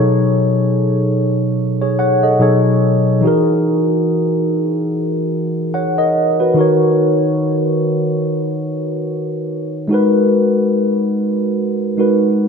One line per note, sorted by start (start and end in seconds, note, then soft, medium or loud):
0.00 2.35 B2 medium
0.00 2.36 F#3 medium
0.00 2.36 D#4 medium
0.00 0.12 G#4 medium
0.00 1.55 A4 medium
0.00 1.55 C#5 medium
1.82 1.98 G#4 medium
1.82 1.98 C#5 medium
1.99 2.22 C#5 medium
1.99 2.22 F#5 medium
2.23 2.40 A4 medium
2.23 2.63 D#5 medium
2.39 3.23 B2 medium
2.39 3.23 F#3 medium
2.39 3.21 D#4 medium
2.39 3.24 G#4 medium
2.39 3.24 A4 medium
2.39 3.25 C#5 medium
3.21 6.51 E3 medium
3.21 6.52 D#4 medium
3.21 5.70 F#4 medium
3.26 5.71 G#4 medium
3.26 5.71 A#4 medium
5.74 5.97 C#5 medium
5.74 5.97 F#5 medium
5.98 6.38 A#4 medium
5.98 6.38 D#5 medium
6.40 6.56 F#4 medium
6.40 6.79 B4 medium
6.54 9.85 D#3 medium
6.54 9.86 D#4 medium
6.54 9.86 F#4 medium
6.59 9.87 A#4 medium
6.59 9.88 C#5 medium
9.88 11.93 G#3 medium
9.88 11.94 D#4 medium
9.88 11.95 F#4 medium
9.93 11.96 A#4 medium
9.93 11.97 B4 medium
11.97 12.48 G#3 medium
11.97 12.48 D#4 medium
11.97 12.48 F#4 medium
11.97 12.48 A#4 medium
11.97 12.48 B4 medium